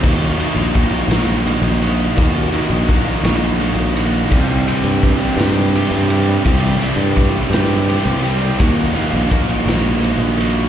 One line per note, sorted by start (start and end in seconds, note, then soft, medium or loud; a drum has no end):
0.02 0.33 D#2 loud
0.02 0.74 D#3 loud
0.02 0.41 A#3 loud
0.02 0.40 D#4 medium
0.02 0.39 F#4 loud
0.02 kick loud
0.02 ride loud
0.40 0.75 A#3 medium
0.40 0.75 D#4 medium
0.40 0.75 F#4 medium
0.40 ride medium
0.55 0.86 A#1 medium
0.74 1.44 D#3 medium
0.74 1.09 A#3 medium
0.74 1.08 D#4 medium
0.74 1.07 F#4 medium
0.74 kick medium
0.74 ride medium
1.08 1.54 A#1 loud
1.08 1.45 A#3 medium
1.08 1.46 D#4 medium
1.08 1.46 F#4 medium
1.08 snare loud
1.08 ride loud
1.46 2.15 D#3 medium
1.46 1.82 A#3 medium
1.46 1.82 D#4 medium
1.46 1.81 F#4 medium
1.46 ride medium
1.62 2.08 A#1 loud
1.82 2.16 A#3 medium
1.82 2.17 D#4 medium
1.82 2.17 F#4 medium
1.82 ride medium
2.16 2.47 D#2 loud
2.16 2.87 D#3 medium
2.16 2.52 A#3 medium
2.16 2.52 D#4 medium
2.16 2.50 F#4 loud
2.16 kick loud
2.16 ride medium
2.51 2.88 A#3 medium
2.51 2.89 D#4 medium
2.51 2.89 F#4 medium
2.51 ride medium
2.70 3.00 A#1 medium
2.88 3.60 D#3 medium
2.88 3.25 A#3 medium
2.88 3.24 D#4 medium
2.88 3.23 F#4 medium
2.88 kick medium
2.88 ride medium
3.23 3.69 A#1 loud
3.23 3.60 A#3 medium
3.23 3.61 D#4 medium
3.23 3.62 F#4 medium
3.23 snare loud
3.23 ride loud
3.60 4.29 D#3 medium
3.60 3.97 A#3 medium
3.60 3.96 D#4 medium
3.60 3.95 F#4 medium
3.60 ride medium
3.76 4.21 A#1 loud
3.96 4.30 A#3 medium
3.96 4.30 D#4 medium
3.96 4.29 F#4 medium
3.96 ride medium
4.30 4.61 C2 loud
4.30 6.43 C3 medium
4.30 5.01 E3 medium
4.30 4.68 G3 loud
4.30 4.66 C4 loud
4.30 4.66 G4 loud
4.30 kick loud
4.30 crash medium
4.67 5.02 G3 medium
4.67 5.03 C4 medium
4.67 5.03 G4 medium
4.67 ride medium
4.84 5.14 G2 medium
5.01 5.73 E3 medium
5.01 5.38 G3 medium
5.01 5.37 C4 medium
5.01 5.36 G4 medium
5.01 kick medium
5.01 ride medium
5.37 5.82 G2 loud
5.37 5.73 G3 medium
5.37 5.74 C4 medium
5.37 5.75 G4 medium
5.37 snare loud
5.37 ride loud
5.74 6.43 E3 medium
5.74 6.10 G3 medium
5.74 6.09 C4 medium
5.74 6.08 G4 medium
5.74 ride medium
5.91 6.36 G2 loud
6.09 6.43 G3 medium
6.09 6.44 C4 medium
6.09 6.44 G4 medium
6.09 ride medium
6.44 6.76 C2 loud
6.44 7.16 C3 medium
6.44 7.13 E3 medium
6.44 6.81 G3 loud
6.44 6.80 C4 loud
6.44 6.79 G4 loud
6.44 kick loud
6.44 ride loud
6.80 7.15 G3 medium
6.80 7.15 C4 medium
6.80 7.15 G4 medium
6.80 ride medium
6.96 7.27 G2 medium
7.14 7.86 E3 medium
7.14 7.52 G3 medium
7.14 7.51 C4 medium
7.14 7.50 G4 medium
7.14 kick medium
7.14 ride medium
7.50 7.96 G2 medium
7.50 7.87 G3 medium
7.50 7.88 C4 medium
7.50 7.88 G4 medium
7.50 ride medium
7.54 snare loud
7.87 8.57 E3 medium
7.87 8.24 G3 medium
7.87 8.23 C4 medium
7.87 8.21 G4 medium
7.87 ride medium
8.05 8.51 C2 loud
8.23 8.58 G3 medium
8.23 8.57 C4 medium
8.23 8.57 G4 medium
8.23 ride medium
8.59 8.90 D#2 loud
8.59 9.28 D#3 medium
8.59 8.95 A#3 medium
8.59 8.94 D#4 loud
8.59 8.92 F#4 loud
8.59 kick loud
8.59 ride medium
8.94 9.29 A#3 medium
8.94 9.30 D#4 medium
8.94 9.30 F#4 medium
8.94 ride medium
9.13 9.43 A#1 medium
9.29 9.99 D#3 medium
9.29 9.66 A#3 medium
9.29 9.66 D#4 medium
9.29 9.65 F#4 medium
9.29 kick medium
9.29 ride medium
9.66 10.11 A#1 loud
9.66 10.00 A#3 medium
9.66 10.00 D#4 medium
9.66 10.01 F#4 medium
9.66 snare loud
9.66 ride medium
10.00 10.69 D#3 medium
10.00 10.38 A#3 medium
10.00 10.37 D#4 medium
10.00 10.36 F#4 medium
10.04 ride medium
10.18 10.64 A#1 medium
10.37 10.69 A#3 medium
10.37 10.69 D#4 medium
10.37 10.69 F#4 medium
10.37 ride medium